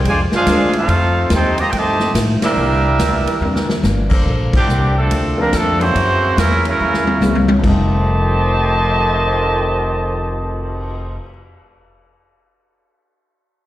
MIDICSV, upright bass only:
0, 0, Header, 1, 3, 480
1, 0, Start_track
1, 0, Tempo, 421941
1, 1009, Time_signature, 4, 2, 24, 8
1, 15544, End_track
2, 0, Start_track
2, 0, Title_t, "Upright bass"
2, 0, Program_c, 0, 32
2, 54, Note_on_c, 0, 41, 90
2, 341, Note_off_c, 0, 41, 0
2, 522, Note_on_c, 0, 38, 100
2, 991, Note_off_c, 0, 38, 0
2, 999, Note_on_c, 0, 41, 96
2, 1470, Note_off_c, 0, 41, 0
2, 1480, Note_on_c, 0, 39, 104
2, 1949, Note_off_c, 0, 39, 0
2, 1957, Note_on_c, 0, 43, 82
2, 2428, Note_off_c, 0, 43, 0
2, 2436, Note_on_c, 0, 45, 99
2, 2730, Note_off_c, 0, 45, 0
2, 2913, Note_on_c, 0, 36, 103
2, 3386, Note_off_c, 0, 36, 0
2, 3402, Note_on_c, 0, 38, 93
2, 3694, Note_off_c, 0, 38, 0
2, 3870, Note_on_c, 0, 40, 84
2, 4344, Note_off_c, 0, 40, 0
2, 4361, Note_on_c, 0, 31, 100
2, 4830, Note_off_c, 0, 31, 0
2, 4843, Note_on_c, 0, 34, 93
2, 5305, Note_off_c, 0, 34, 0
2, 5312, Note_on_c, 0, 36, 102
2, 5785, Note_off_c, 0, 36, 0
2, 5804, Note_on_c, 0, 38, 87
2, 6271, Note_off_c, 0, 38, 0
2, 6291, Note_on_c, 0, 41, 98
2, 6755, Note_off_c, 0, 41, 0
2, 6768, Note_on_c, 0, 42, 91
2, 7234, Note_off_c, 0, 42, 0
2, 7248, Note_on_c, 0, 40, 98
2, 7714, Note_off_c, 0, 40, 0
2, 7736, Note_on_c, 0, 39, 90
2, 8198, Note_off_c, 0, 39, 0
2, 8204, Note_on_c, 0, 37, 99
2, 8672, Note_off_c, 0, 37, 0
2, 8684, Note_on_c, 0, 29, 101
2, 12702, Note_off_c, 0, 29, 0
2, 15544, End_track
3, 0, Start_track
3, 0, Title_t, "Muted upright bass strokes"
3, 366, Note_on_c, 9, 29, 41
3, 480, Note_off_c, 9, 29, 0
3, 2748, Note_on_c, 9, 29, 48
3, 2862, Note_off_c, 9, 29, 0
3, 3703, Note_on_c, 9, 29, 44
3, 3817, Note_off_c, 9, 29, 0
3, 15544, End_track
0, 0, End_of_file